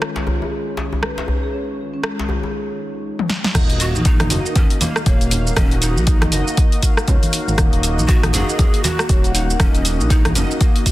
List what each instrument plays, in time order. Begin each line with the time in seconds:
Already playing: analog synth pad D#3 C#4 F4, analog polysynth D#3 G#3 D#4 F4 C#5
0.02 marimba G#3, cross-stick
0.16 djembe slap
0.27 marimba F4, djembe tone, djembe bass
0.42 marimba G#4, djembe tone
0.77 djembe slap
0.93 djembe tone
1.03 marimba B4, cross-stick, djembe tone
1.18 djembe slap, djembe tone
1.28 marimba C#4, djembe bass
1.43 marimba G#4
1.54 marimba C#4
1.94 marimba C#4
2.04 marimba G#3, cross-stick
2.19 djembe slap
2.29 marimba F4, djembe tone, djembe bass
2.43 marimba G#4, djembe tone
3.19 high tom
3.30 snare
3.44 snare
3.54 analog synth bass D#1, analog synth pad D#3 A#3 F#4, analog polysynth A#3 D#4 F#4 D#5, marimba D#4, kick, cross-stick, closed hi-hat, crash, high conga, shaker
3.70 closed hi-hat
3.80 pan flute F#4, open hi-hat, shaker
3.94 analog synth bass A#1, marimba D#4, high conga, shaker
4.05 marimba A#3, pan flute D#4, kick, closed hi-hat, shaker
4.20 cross-stick, closed hi-hat, high conga
4.30 analog synth bass F#1, analog polysynth A#3 D#4 F#4 D#5, marimba F#4, open hi-hat, low conga, shaker
4.46 marimba A#4, shaker
4.56 pan flute C#4, kick, closed hi-hat, high conga, low conga, shaker
4.70 closed hi-hat
4.81 pan flute A#3, analog polysynth A#3 D#4 F#4 F5, open hi-hat, high conga, low conga, shaker
4.96 cross-stick, shaker
5.06 analog synth bass D#1, pan flute A#3, marimba C#5, kick, closed hi-hat, shaker
5.21 closed hi-hat, shaker
5.31 marimba D#4, open hi-hat, low conga, shaker
5.46 marimba A#4, shaker
5.56 analog synth bass D#1, analog polysynth A#3 D#4 F#4 D#5, pan flute C#4, kick, cross-stick, closed hi-hat, high conga, shaker
5.71 closed hi-hat
5.81 pan flute D#4, open hi-hat, shaker
5.96 analog synth bass A#1, marimba D#4, shaker
6.07 marimba A#3, kick, closed hi-hat, shaker
6.22 cross-stick, closed hi-hat, high conga
6.32 analog synth bass F#1, analog polysynth A#3 D#4 F#4 D#5, marimba F#4, open hi-hat, low conga, shaker
6.47 marimba A#4, shaker
6.57 kick, closed hi-hat, shaker
6.72 closed hi-hat
6.83 analog polysynth A#3 D#4 F#4 F5, kick, open hi-hat, shaker
6.97 cross-stick, shaker
7.08 analog synth bass C#2, marimba C#5, kick, closed hi-hat, low conga, shaker
7.23 closed hi-hat, high conga, shaker
7.33 marimba D#4, open hi-hat, shaker
7.48 analog synth bass G#1, marimba A#4, shaker
7.58 analog synth bass D#1, analog polysynth A#3 D#4 F#4 D#5, marimba D#4, kick, cross-stick, closed hi-hat, high conga, shaker
7.73 closed hi-hat
7.83 open hi-hat, shaker
7.98 analog synth bass A#1, marimba D#4, high conga, shaker
8.08 marimba A#3, pan flute F#4, kick, closed hi-hat, shaker
8.23 cross-stick, closed hi-hat, high conga
8.33 analog synth bass F#1, analog polysynth A#3 D#4 F#4 D#5, marimba F#4, pan flute G#4, open hi-hat, low conga, shaker
8.49 marimba A#4, shaker
8.59 kick, closed hi-hat, high conga, low conga, shaker
8.74 closed hi-hat
8.84 analog polysynth A#3 D#4 F#4 F#5, pan flute F#4, open hi-hat, high conga, low conga, shaker
8.99 cross-stick, shaker
9.09 analog synth bass D#1, marimba C#5, kick, closed hi-hat, shaker
9.24 closed hi-hat, shaker
9.34 pan flute D#4, marimba D#4, open hi-hat, low conga, shaker
9.50 marimba A#4, shaker
9.59 analog synth bass D#1, analog polysynth A#3 D#4 F#4 D#5, pan flute C#4, marimba D#4, kick, cross-stick, closed hi-hat, high conga, shaker
9.75 closed hi-hat, shaker
9.85 open hi-hat, shaker
10.00 analog synth bass A#1, marimba D#4, shaker
10.09 marimba A#3, pan flute D#4, kick, closed hi-hat, shaker
10.25 cross-stick, closed hi-hat, high conga
10.35 analog synth bass F#1, analog polysynth A#3 D#4 F#4 D#5, pan flute C#4, marimba F#4, open hi-hat, low conga, shaker
10.51 marimba A#4, shaker
10.61 pan flute A#3, kick, closed hi-hat, shaker
10.76 closed hi-hat
10.86 analog polysynth A#3 D#4 F#4 F5, kick, open hi-hat, shaker